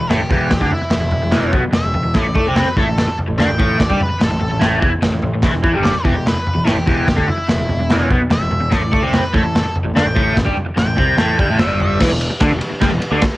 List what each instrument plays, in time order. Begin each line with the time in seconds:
Already playing: lead electric guitar B4
0.01 picked electric bass E1
0.10 picked electric bass A1, overdriven electric guitar A2 A3, lead electric guitar G4, snare, floor tom
0.20 picked electric bass E1, overdriven electric guitar E2
0.30 picked electric bass E1, overdriven electric guitar E2 E3, lead electric guitar G4, kick, floor tom
0.50 picked electric bass E1, overdriven electric guitar E2, kick, snare, floor tom
0.60 picked electric bass D2, overdriven electric guitar D3 D4, kick
0.71 lead electric guitar E4, muted overdriven electric guitar stroke, muted picked electric bass stroke, floor tom
0.82 muted overdriven electric guitar stroke, muted picked electric bass stroke
0.90 picked electric bass E1, overdriven electric guitar E2, snare, floor tom
1.01 picked electric bass E1, overdriven electric guitar E2
1.11 picked electric bass E1, overdriven electric guitar E2, floor tom
1.22 picked electric bass E1, overdriven electric guitar E2
1.31 picked electric bass E1, overdriven electric guitar E2 E3, snare, floor tom
1.52 picked electric bass B1, overdriven electric guitar B2 B3, kick, floor tom
1.63 muted overdriven electric guitar stroke, muted picked electric bass stroke
1.73 picked electric bass E1, overdriven electric guitar E2, lead electric guitar E5, snare, floor tom
1.85 picked electric bass E1, overdriven electric guitar E2
1.94 picked electric bass E1, overdriven electric guitar E2, floor tom
2.04 picked electric bass E1, overdriven electric guitar E2
2.14 picked electric bass A1, overdriven electric guitar A2 A3, kick, snare, floor tom
2.21 lead electric guitar D5
2.26 picked electric bass A1, overdriven electric guitar A2
2.35 picked electric bass A2, overdriven electric guitar A3 A4, lead electric guitar D5, kick, floor tom
2.47 picked electric bass C2, overdriven electric guitar C3 C4
2.56 lead electric guitar B4, snare, floor tom
2.67 muted picked electric bass stroke, muted overdriven electric guitar stroke
2.77 picked electric bass A1, overdriven electric guitar A2 A3, lead electric guitar A4, kick, floor tom
2.87 picked electric bass A1, overdriven electric guitar A2
2.98 snare, floor tom
3.08 muted overdriven electric guitar stroke, muted picked electric bass stroke
3.19 floor tom
3.28 picked electric bass A1, overdriven electric guitar A2
3.38 picked electric bass D2, overdriven electric guitar D3 D4, lead electric guitar G5, snare, floor tom
3.48 picked electric bass A1, overdriven electric guitar A2
3.58 picked electric bass A1, overdriven electric guitar A2 A3, kick, floor tom
3.79 picked electric bass A1, overdriven electric guitar A2, lead electric guitar D5, kick, snare, floor tom
3.90 picked electric bass G2, overdriven electric guitar G3 G4, kick
4.00 lead electric guitar B4, muted overdriven electric guitar stroke, muted picked electric bass stroke, floor tom
4.10 muted overdriven electric guitar stroke, muted picked electric bass stroke
4.20 picked electric bass A1, overdriven electric guitar A2, lead electric guitar A4, snare, floor tom
4.31 picked electric bass A1, overdriven electric guitar A2
4.41 picked electric bass A1, overdriven electric guitar A2, floor tom
4.51 picked electric bass A1, overdriven electric guitar A2
4.60 overdriven electric guitar A2 A3, snare, floor tom
4.64 picked electric bass A1
4.80 picked electric bass E2, overdriven electric guitar E3 E4, kick, floor tom
4.92 muted overdriven electric guitar stroke, muted picked electric bass stroke
5.02 picked electric bass A1, overdriven electric guitar A2, snare, floor tom
5.13 picked electric bass A1, overdriven electric guitar A2
5.22 picked electric bass A1, overdriven electric guitar A2, floor tom
5.34 picked electric bass A1, overdriven electric guitar A2
5.42 picked electric bass E1, overdriven electric guitar E2 E3, kick, snare, floor tom
5.54 picked electric bass E1, overdriven electric guitar E2
5.63 picked electric bass E2, overdriven electric guitar E3 E4, kick, floor tom
5.74 picked electric bass G1, overdriven electric guitar G2 G3
5.84 lead electric guitar D5, snare, floor tom
5.95 muted overdriven electric guitar stroke, muted picked electric bass stroke
6.04 picked electric bass E1, overdriven electric guitar E2 E3, lead electric guitar G4, kick, floor tom
6.14 picked electric bass E1, overdriven electric guitar E2
6.26 lead electric guitar B4, snare, floor tom
6.34 muted overdriven electric guitar stroke, muted picked electric bass stroke
6.47 floor tom
6.55 picked electric bass E1, overdriven electric guitar E2
6.65 picked electric bass A1, overdriven electric guitar A2 A3, lead electric guitar G4, snare, floor tom
6.76 picked electric bass E1, overdriven electric guitar E2
6.86 picked electric bass E1, overdriven electric guitar E2 E3, lead electric guitar G4, kick, floor tom
7.07 picked electric bass E1, overdriven electric guitar E2, kick, snare, floor tom
7.16 picked electric bass D2, overdriven electric guitar D3 D4, kick
7.27 lead electric guitar E4, muted overdriven electric guitar stroke, muted picked electric bass stroke, floor tom
7.38 muted overdriven electric guitar stroke, muted picked electric bass stroke
7.48 picked electric bass E1, overdriven electric guitar E2, snare, floor tom
7.59 picked electric bass E1, overdriven electric guitar E2
7.69 picked electric bass E1, overdriven electric guitar E2, floor tom
7.80 picked electric bass E1, overdriven electric guitar E2
7.90 picked electric bass E1, overdriven electric guitar E2 E3, snare, floor tom
8.10 picked electric bass B1, overdriven electric guitar B2 B3, kick, floor tom
8.21 muted overdriven electric guitar stroke, muted picked electric bass stroke
8.30 picked electric bass E1, overdriven electric guitar E2, lead electric guitar E5, snare, floor tom
8.40 picked electric bass E1, overdriven electric guitar E2
8.50 picked electric bass E1, overdriven electric guitar E2, floor tom
8.60 picked electric bass E1, overdriven electric guitar E2
8.70 picked electric bass A1, overdriven electric guitar A2 A3, kick, snare, floor tom
8.78 picked electric bass A1, overdriven electric guitar A2, lead electric guitar D5
8.92 picked electric bass A2, overdriven electric guitar A3 A4, lead electric guitar D5, kick, floor tom
9.02 picked electric bass C2, overdriven electric guitar C3 C4
9.13 lead electric guitar B4, snare, floor tom
9.23 muted picked electric bass stroke, muted overdriven electric guitar stroke
9.33 picked electric bass A1, overdriven electric guitar A2 A3, lead electric guitar A4, kick, floor tom
9.42 picked electric bass A1, overdriven electric guitar A2
9.55 snare, floor tom
9.64 muted picked electric bass stroke, muted overdriven electric guitar stroke
9.76 floor tom
9.83 picked electric bass A1, overdriven electric guitar A2
9.94 picked electric bass D2, overdriven electric guitar D3 D4, lead electric guitar G5, snare, floor tom
10.05 picked electric bass A1, overdriven electric guitar A2
10.15 picked electric bass A1, overdriven electric guitar A2 A3, kick, floor tom
10.36 picked electric bass A1, overdriven electric guitar A2, kick, snare, floor tom
10.45 picked electric bass G2, overdriven electric guitar G3 G4, kick
10.56 muted overdriven electric guitar stroke, muted picked electric bass stroke, floor tom
10.67 muted overdriven electric guitar stroke, muted picked electric bass stroke
10.76 picked electric bass A1, overdriven electric guitar A2, lead electric guitar G5, snare, floor tom
10.87 picked electric bass A1, overdriven electric guitar A2
10.97 picked electric bass C2, overdriven electric guitar C3 C4, kick, floor tom
11.17 picked electric bass A1, overdriven electric guitar A2 A3, snare, floor tom
11.38 picked electric bass G1, overdriven electric guitar G2 G3, kick, floor tom
11.49 picked electric bass A1, overdriven electric guitar A2 A3
11.59 picked electric bass G1, overdriven electric guitar G2 G3, lead electric guitar E5, snare, floor tom
11.80 lead electric guitar E5, floor tom
12.00 picked electric bass E1, overdriven electric guitar E2 E3, kick, snare, crash
12.10 picked electric bass E1, overdriven electric guitar E2
12.21 ride
12.30 muted overdriven electric guitar stroke, muted picked electric bass stroke
12.40 picked electric bass D2, overdriven electric guitar D3 D4, kick, snare, ride
12.51 picked electric bass E1, overdriven electric guitar E2
12.59 muted overdriven electric guitar stroke, muted picked electric bass stroke, ride
12.71 muted overdriven electric guitar stroke, muted picked electric bass stroke
12.81 picked electric bass G1, overdriven electric guitar G2 G3, kick, snare, ride
12.92 picked electric bass E1, overdriven electric guitar E2
13.01 muted overdriven electric guitar stroke, muted picked electric bass stroke, ride
13.11 picked electric bass D2, overdriven electric guitar D3 D4
13.22 muted overdriven electric guitar stroke, muted picked electric bass stroke, kick, snare, ride